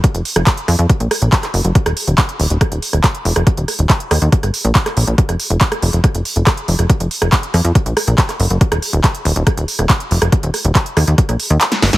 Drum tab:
HH |xxoxxxoxxxoxxxox|xxoxxxoxxxoxxxox|xxoxxxoxxxoxxxox|xxoxxxoxxxoxxxox|
CP |----x-------xx--|----x-------x---|----x-------xx--|----x-------x---|
SD |---r--r---r--r--|-r--r---r--r---r|--r---r--r---r--|-r---r--r---r--r|
BD |o---o---o---o---|o---o---o---o---|o---o---o---o---|o---o---o---o---|

HH |xxoxxxoxxxoxxxox|xxoxxxoxxxoxxxox|xxoxxxoxxxoxxxox|
CP |----x-------xx--|----x-------x---|----x-------x---|
SD |---r--r---r--r--|-r--r---r--r---r|--r---r--r---ooo|
BD |o---o---o---o---|o---o---o---o---|o---o---o-------|